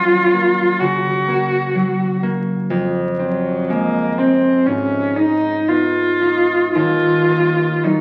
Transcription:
Already playing: F#2 F3 F#3 A#3 F4
0.33 A#3
0.80 C#3 F#4
1.28 A#3
1.75 F#3
2.23 A#3
2.70 F2
3.19 F#3 C4
3.70 G#3 A#3
4.18 C4
4.66 G#2 C#4
5.16 D#4
5.68 B3 F4
6.21 D#4
6.74 D#2 F4
7.29 A#3
7.84 F#3 D#4

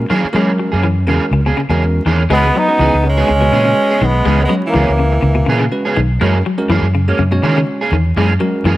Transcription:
0.10 D#3 E3 F#3 A#3 C#4 G#4
0.24 muted fingered electric bass stroke
0.33 E3 F#3 G#3 A#3 C#4 F#4 G#4 A#4
0.59 F#3
0.72 F#2 A#3 C#4 G#4
0.83 E3
1.07 E2 C#3 E3 G#3 A#3 C#4 F#4 G#4 A#4
1.31 C#2 C#3
1.46 B2 A#3 C#4 G#4
1.57 C#3
1.70 E2 C#3 G#3 A#3 C#4 F#4 G#4 A#4
2.06 E2 D#3 E3 A#3 C#4 G#4
2.30 C#2 E3 G#3 B3 C#4 F#4 G#4 B4
2.34 G#3
2.55 F#3 B3 D#4
2.68 G#3 C#4 F#4 B4
2.79 C#2 E3 B3 G#4
2.94 C#2
3.04 C#3 C#4
3.09 G#3
3.17 G#3 B3 C#4 F#4 G#4 B4
3.28 C#2 C#3
3.41 B2 G#3 C#4 F#4 B4
3.52 A#2 C#3 E3 B3 C#4 G#4
3.65 C#3
3.90 B3 G#4
4.01 B1 D#3 B3
4.07 G#3
4.25 C#2 E3 G#3 B3 C#4 G#4
4.43 G#3 B3
4.49 F#3 G#3 C#4 F#4 C#5
4.66 E3 A#3
4.74 C#2 E3 B3 C#4 G#4
4.89 C#2
4.99 C#3
5.12 muted clean electric guitar stroke
5.22 C#2 C#3
5.35 B2
5.46 A#2 C#3 E3 B3 C#4 G#4
5.60 C#3
5.72 G#3 C#4 F#4 B4
5.85 B3 C#4 G#4
5.97 B1 D#3
6.21 F#2 E3 G#3 A#3 C#4 F#4 G#4 A#4
6.46 F#3
6.58 G#3 C#4 F#4 A#4
6.69 F#2 E3 A#3 C#4 G#4
6.82 F#2
6.95 C#3
7.08 G#3 A#3 C#4 F#4 G#4
7.19 F#2 C#3
7.32 B2 G#3 C#4 F#4 C#5
7.43 C#3 D#3 E3 A#3 C#4 G#4
7.57 C#3
7.81 A#3 C#4 G#4
7.92 E2 D#3
8.16 F#2 E3 G#3 A#3 C#4 G#4
8.40 F#3 G#3 C#4 F#4 A#4
8.64 F#2 E3 A#3 C#4 G#4

